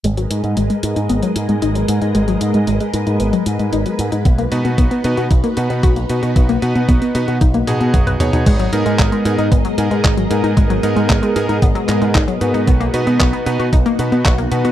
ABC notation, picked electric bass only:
X:1
M:4/4
L:1/16
Q:1/4=114
K:G#m
V:1 name="Picked electric bass" clef=bass
G,,,2 G,, G,, G,,, z G,, G,, G,,, z G,, G,, G,,,2 G,, G,, | G,,,2 G,, G,, G,,, z G,, G,, G,,, z G,, G,, G,,, z G,, G,, | B,,,2 B,, B,, B,,, z B,, B,, B,,, z B,, B,, B,,,2 B,, B,, | B,,,2 B,, B,, B,,, z B,, B,, B,,,2 B,, B,, B,,,2 B,, B,, |
G,,,2 G,, G,, G,,, z G,, G,, G,,, z G,, G,, G,,,2 G,, G,, | G,,,2 G,, G,, G,,, z G,, G,, G,,, z G,, G,, G,,, z G,, G,, | B,,,2 B,, B,, B,,, z B,, B,, B,,, z B,, B,, B,,,2 B,, B,, |]